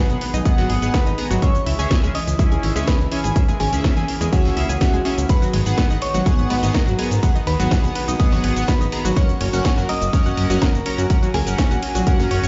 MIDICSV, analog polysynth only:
0, 0, Header, 1, 2, 480
1, 0, Start_track
1, 0, Key_signature, 5, "minor"
1, 0, Tempo, 483871
1, 1412, Time_signature, 4, 2, 24, 8
1, 12379, End_track
2, 0, Start_track
2, 0, Title_t, "Analog polysynth"
2, 0, Program_c, 0, 90
2, 97, Note_on_c, 0, 59, 77
2, 97, Note_on_c, 0, 68, 72
2, 97, Note_on_c, 0, 78, 90
2, 163, Note_off_c, 0, 59, 0
2, 163, Note_off_c, 0, 68, 0
2, 163, Note_off_c, 0, 78, 0
2, 451, Note_on_c, 0, 59, 93
2, 451, Note_on_c, 0, 68, 84
2, 451, Note_on_c, 0, 78, 103
2, 786, Note_off_c, 0, 59, 0
2, 786, Note_off_c, 0, 68, 0
2, 786, Note_off_c, 0, 78, 0
2, 816, Note_on_c, 0, 68, 89
2, 817, Note_on_c, 0, 59, 99
2, 817, Note_on_c, 0, 78, 110
2, 922, Note_off_c, 0, 59, 0
2, 922, Note_off_c, 0, 68, 0
2, 922, Note_off_c, 0, 78, 0
2, 1171, Note_on_c, 0, 59, 92
2, 1171, Note_on_c, 0, 68, 86
2, 1171, Note_on_c, 0, 82, 103
2, 1243, Note_off_c, 0, 59, 0
2, 1243, Note_off_c, 0, 68, 0
2, 1243, Note_off_c, 0, 82, 0
2, 1411, Note_on_c, 0, 61, 87
2, 1411, Note_on_c, 0, 68, 80
2, 1411, Note_on_c, 0, 76, 98
2, 1483, Note_off_c, 0, 61, 0
2, 1483, Note_off_c, 0, 68, 0
2, 1483, Note_off_c, 0, 76, 0
2, 1776, Note_on_c, 0, 61, 89
2, 1776, Note_on_c, 0, 68, 84
2, 1776, Note_on_c, 0, 76, 97
2, 1986, Note_off_c, 0, 61, 0
2, 1986, Note_off_c, 0, 68, 0
2, 1986, Note_off_c, 0, 76, 0
2, 2016, Note_on_c, 0, 61, 82
2, 2016, Note_on_c, 0, 68, 74
2, 2016, Note_on_c, 0, 76, 87
2, 2082, Note_off_c, 0, 68, 0
2, 2082, Note_off_c, 0, 76, 0
2, 2083, Note_off_c, 0, 61, 0
2, 2371, Note_on_c, 0, 61, 92
2, 2371, Note_on_c, 0, 64, 100
2, 2371, Note_on_c, 0, 68, 83
2, 2706, Note_off_c, 0, 61, 0
2, 2706, Note_off_c, 0, 64, 0
2, 2706, Note_off_c, 0, 68, 0
2, 2736, Note_on_c, 0, 76, 111
2, 2737, Note_on_c, 0, 61, 97
2, 2737, Note_on_c, 0, 68, 91
2, 2842, Note_off_c, 0, 61, 0
2, 2842, Note_off_c, 0, 68, 0
2, 2842, Note_off_c, 0, 76, 0
2, 3092, Note_on_c, 0, 61, 96
2, 3092, Note_on_c, 0, 68, 86
2, 3092, Note_on_c, 0, 80, 101
2, 3163, Note_off_c, 0, 61, 0
2, 3163, Note_off_c, 0, 68, 0
2, 3163, Note_off_c, 0, 80, 0
2, 3331, Note_on_c, 0, 61, 88
2, 3331, Note_on_c, 0, 68, 79
2, 3331, Note_on_c, 0, 76, 95
2, 3403, Note_off_c, 0, 61, 0
2, 3403, Note_off_c, 0, 68, 0
2, 3403, Note_off_c, 0, 76, 0
2, 3696, Note_on_c, 0, 61, 92
2, 3696, Note_on_c, 0, 68, 86
2, 3696, Note_on_c, 0, 76, 99
2, 3906, Note_off_c, 0, 61, 0
2, 3906, Note_off_c, 0, 68, 0
2, 3906, Note_off_c, 0, 76, 0
2, 3936, Note_on_c, 0, 61, 79
2, 3936, Note_on_c, 0, 68, 74
2, 3936, Note_on_c, 0, 76, 90
2, 4002, Note_off_c, 0, 61, 0
2, 4002, Note_off_c, 0, 68, 0
2, 4002, Note_off_c, 0, 76, 0
2, 4291, Note_on_c, 0, 61, 94
2, 4291, Note_on_c, 0, 68, 87
2, 4291, Note_on_c, 0, 76, 105
2, 4626, Note_off_c, 0, 61, 0
2, 4626, Note_off_c, 0, 68, 0
2, 4626, Note_off_c, 0, 76, 0
2, 4771, Note_on_c, 0, 61, 95
2, 4771, Note_on_c, 0, 68, 88
2, 4771, Note_on_c, 0, 76, 107
2, 4843, Note_off_c, 0, 61, 0
2, 4843, Note_off_c, 0, 68, 0
2, 4843, Note_off_c, 0, 76, 0
2, 5011, Note_on_c, 0, 61, 89
2, 5011, Note_on_c, 0, 68, 80
2, 5011, Note_on_c, 0, 76, 95
2, 5083, Note_off_c, 0, 61, 0
2, 5083, Note_off_c, 0, 68, 0
2, 5083, Note_off_c, 0, 76, 0
2, 5251, Note_on_c, 0, 59, 86
2, 5251, Note_on_c, 0, 68, 78
2, 5251, Note_on_c, 0, 78, 95
2, 5323, Note_off_c, 0, 59, 0
2, 5323, Note_off_c, 0, 68, 0
2, 5323, Note_off_c, 0, 78, 0
2, 5616, Note_on_c, 0, 59, 89
2, 5616, Note_on_c, 0, 68, 83
2, 5616, Note_on_c, 0, 78, 100
2, 5826, Note_off_c, 0, 59, 0
2, 5826, Note_off_c, 0, 68, 0
2, 5826, Note_off_c, 0, 78, 0
2, 5856, Note_on_c, 0, 59, 80
2, 5856, Note_on_c, 0, 68, 72
2, 5857, Note_on_c, 0, 78, 88
2, 5922, Note_off_c, 0, 59, 0
2, 5923, Note_off_c, 0, 68, 0
2, 5923, Note_off_c, 0, 78, 0
2, 6211, Note_on_c, 0, 59, 95
2, 6211, Note_on_c, 0, 68, 87
2, 6211, Note_on_c, 0, 78, 104
2, 6546, Note_off_c, 0, 59, 0
2, 6546, Note_off_c, 0, 68, 0
2, 6546, Note_off_c, 0, 78, 0
2, 6576, Note_on_c, 0, 59, 97
2, 6576, Note_on_c, 0, 68, 90
2, 6576, Note_on_c, 0, 78, 109
2, 6682, Note_off_c, 0, 59, 0
2, 6682, Note_off_c, 0, 68, 0
2, 6682, Note_off_c, 0, 78, 0
2, 6931, Note_on_c, 0, 59, 95
2, 6931, Note_on_c, 0, 68, 89
2, 6931, Note_on_c, 0, 82, 101
2, 7003, Note_off_c, 0, 59, 0
2, 7003, Note_off_c, 0, 68, 0
2, 7003, Note_off_c, 0, 82, 0
2, 7171, Note_on_c, 0, 59, 86
2, 7171, Note_on_c, 0, 68, 80
2, 7171, Note_on_c, 0, 78, 96
2, 7243, Note_off_c, 0, 59, 0
2, 7243, Note_off_c, 0, 68, 0
2, 7243, Note_off_c, 0, 78, 0
2, 7536, Note_on_c, 0, 59, 89
2, 7536, Note_on_c, 0, 68, 80
2, 7536, Note_on_c, 0, 78, 102
2, 7746, Note_off_c, 0, 59, 0
2, 7746, Note_off_c, 0, 68, 0
2, 7746, Note_off_c, 0, 78, 0
2, 7776, Note_on_c, 0, 59, 78
2, 7776, Note_on_c, 0, 68, 72
2, 7776, Note_on_c, 0, 78, 87
2, 7842, Note_off_c, 0, 59, 0
2, 7842, Note_off_c, 0, 68, 0
2, 7842, Note_off_c, 0, 78, 0
2, 8131, Note_on_c, 0, 59, 97
2, 8131, Note_on_c, 0, 68, 89
2, 8131, Note_on_c, 0, 78, 105
2, 8466, Note_off_c, 0, 59, 0
2, 8466, Note_off_c, 0, 68, 0
2, 8466, Note_off_c, 0, 78, 0
2, 8496, Note_on_c, 0, 59, 97
2, 8496, Note_on_c, 0, 68, 92
2, 8496, Note_on_c, 0, 78, 109
2, 8602, Note_off_c, 0, 59, 0
2, 8602, Note_off_c, 0, 68, 0
2, 8602, Note_off_c, 0, 78, 0
2, 8851, Note_on_c, 0, 59, 95
2, 8851, Note_on_c, 0, 68, 86
2, 8851, Note_on_c, 0, 82, 100
2, 8923, Note_off_c, 0, 59, 0
2, 8923, Note_off_c, 0, 68, 0
2, 8923, Note_off_c, 0, 82, 0
2, 9091, Note_on_c, 0, 61, 87
2, 9091, Note_on_c, 0, 70, 80
2, 9091, Note_on_c, 0, 78, 97
2, 9163, Note_off_c, 0, 61, 0
2, 9163, Note_off_c, 0, 70, 0
2, 9163, Note_off_c, 0, 78, 0
2, 9456, Note_on_c, 0, 61, 92
2, 9456, Note_on_c, 0, 70, 86
2, 9456, Note_on_c, 0, 78, 101
2, 9666, Note_off_c, 0, 61, 0
2, 9666, Note_off_c, 0, 70, 0
2, 9666, Note_off_c, 0, 78, 0
2, 9696, Note_on_c, 0, 61, 80
2, 9696, Note_on_c, 0, 70, 75
2, 9696, Note_on_c, 0, 78, 90
2, 9762, Note_off_c, 0, 61, 0
2, 9762, Note_off_c, 0, 70, 0
2, 9762, Note_off_c, 0, 78, 0
2, 10051, Note_on_c, 0, 61, 94
2, 10051, Note_on_c, 0, 70, 88
2, 10051, Note_on_c, 0, 78, 105
2, 10386, Note_off_c, 0, 61, 0
2, 10386, Note_off_c, 0, 70, 0
2, 10386, Note_off_c, 0, 78, 0
2, 10416, Note_on_c, 0, 61, 99
2, 10416, Note_on_c, 0, 70, 91
2, 10416, Note_on_c, 0, 78, 112
2, 10522, Note_off_c, 0, 61, 0
2, 10522, Note_off_c, 0, 70, 0
2, 10522, Note_off_c, 0, 78, 0
2, 10771, Note_on_c, 0, 61, 93
2, 10771, Note_on_c, 0, 70, 88
2, 10771, Note_on_c, 0, 82, 105
2, 10843, Note_off_c, 0, 61, 0
2, 10843, Note_off_c, 0, 70, 0
2, 10843, Note_off_c, 0, 82, 0
2, 11011, Note_on_c, 0, 61, 88
2, 11011, Note_on_c, 0, 70, 80
2, 11012, Note_on_c, 0, 78, 96
2, 11083, Note_off_c, 0, 61, 0
2, 11083, Note_off_c, 0, 70, 0
2, 11083, Note_off_c, 0, 78, 0
2, 11376, Note_on_c, 0, 70, 86
2, 11377, Note_on_c, 0, 61, 94
2, 11377, Note_on_c, 0, 78, 97
2, 11586, Note_off_c, 0, 61, 0
2, 11586, Note_off_c, 0, 70, 0
2, 11586, Note_off_c, 0, 78, 0
2, 11617, Note_on_c, 0, 61, 78
2, 11617, Note_on_c, 0, 70, 73
2, 11617, Note_on_c, 0, 78, 89
2, 11683, Note_off_c, 0, 61, 0
2, 11683, Note_off_c, 0, 70, 0
2, 11683, Note_off_c, 0, 78, 0
2, 11971, Note_on_c, 0, 61, 95
2, 11971, Note_on_c, 0, 70, 86
2, 11971, Note_on_c, 0, 78, 104
2, 12306, Note_off_c, 0, 61, 0
2, 12306, Note_off_c, 0, 70, 0
2, 12306, Note_off_c, 0, 78, 0
2, 12379, End_track
0, 0, End_of_file